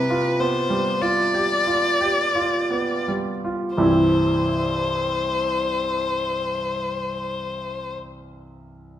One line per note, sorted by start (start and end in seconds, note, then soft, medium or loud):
0.00 3.75 C3 soft
0.00 0.41 B4 soft
0.10 0.58 F4 soft
0.39 0.89 B3 soft
0.39 1.04 C5 soft
0.70 1.21 G3 soft
1.02 1.54 F4 soft
1.02 3.09 D5 soft
1.34 1.87 G4 soft
1.67 2.01 F4 soft
2.01 2.57 G4 soft
2.35 2.93 F4 soft
2.70 3.30 B3 soft
3.08 3.65 G3 soft
3.45 3.78 F4 soft
3.76 7.93 C2 soft
3.76 7.94 G2 soft
3.76 7.94 E3 soft
3.76 7.94 G3 soft
3.76 7.94 C4 soft
3.76 7.94 E4 soft
3.76 7.92 C5 soft